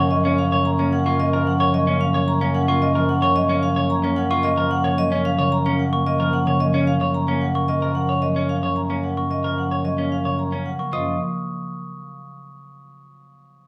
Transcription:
Already playing: F#2 F3 F#3 A#3 C#4
0.00 C#3 C#5 C#6
0.11 F#3 D#5
0.25 A#3 C#4
0.38 F5
0.52 C#3 C#5
0.65 A#5
0.79 A#3 C#4
0.93 C#4 F#5
1.06 A#3 F4 C#6
1.20 A#3 D#5
1.33 F3 A#4
1.47 F#5
1.60 C#3 C#5 C#6
1.74 F#3 D#5
1.87 A#3 C#4
2.01 F5
2.14 C#3 C#5
2.28 A#5
2.41 A#3 C#4
2.55 C#4 F#5
2.68 A#3 F4 C#6
2.82 A#3 D#5
2.95 F3 A#4
3.09 F#5
3.22 C#3 C#5 C#6
3.36 F#3 D#5
3.49 A#3 C#4
3.63 F5
3.76 C#3 C#5
3.90 A#5
4.04 A#3 C#4
4.16 C#4 F#5
4.31 A#3 F4 C#6
4.43 A#3 D#5
4.57 F3 A#4
4.71 F#5
4.84 C#3 C#5
4.98 F#3 D#5
5.12 A#3 C#4
5.25 F5
5.39 C#3 C#5
5.52 A#5
5.66 A#3 C#4
5.79 F#5
5.93 A#3 C#6
6.06 A#3 D#5
6.20 F3 A#4
6.33 F#5
6.47 C#3 C#5
6.60 F#3 D#5
6.74 A#3 C#4
6.87 F5
7.00 C#3 C#5
7.15 A#5
7.28 A#3 C#4
7.41 F#5
7.55 A#3 C#6
7.68 A#3 D#5
7.82 F3 A#4
7.95 F#5
8.09 C#5
8.22 F#3 D#5
8.36 A#3 C#4
8.49 F5
8.63 C#3 C#5
8.76 A#5
8.90 A#3 C#4
9.04 F#5
9.17 A#3 C#6
9.30 A#3 D#5
9.44 F3 A#4
9.58 F#5
9.71 C#5
9.84 F#3 D#5
9.98 A#3 C#4
10.12 F5
10.25 C#3 C#5
10.39 A#5
10.52 A#3 C#4
10.66 F#5
10.79 A#3 C#6
10.93 F#2 F3 F4 D#5 D#6

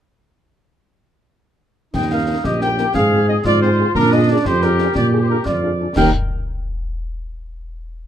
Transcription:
1.94 D#2 D#4 G5, concert bass drum, snare, crash
2.11 A#3 D#4 A#4 F5
2.28 A#3 D#4 A#4
2.44 A#1 G4 D#5, concert bass drum, snare
2.61 A#3 D#4 A#4 G5, snare
2.78 A#3 D#4 A#4, snare
2.94 G#2 G#4 F5, concert bass drum, snare
3.11 C4 F4 G#4
3.28 C4 F4 G#4 D#5
3.45 G#2 F4 D5, concert bass drum, snare
3.61 C4 F4 G#4 C5
3.79 C4 F4 G#4
3.95 A#2 D4 A#4, concert bass drum, snare
4.12 D4 F4 G#4 D#5
4.29 D4 F4 G#4 D5
4.45 F2 G4 C5, concert bass drum, snare
4.62 D4 F4 G#4 A#4, snare
4.78 D4 F4 G#4, snare
4.95 A#2 D5, concert bass drum, snare
5.12 D4 F4 G#4
5.21 C5
5.29 D4 F4 G#4 A#4
5.45 F2 F4 D5, concert bass drum, snare
5.62 D4 F4 G#4
5.79 D4 F4 G#4
5.96 D#2 D#4 G4 A#4 G5, concert bass drum, snare, crash

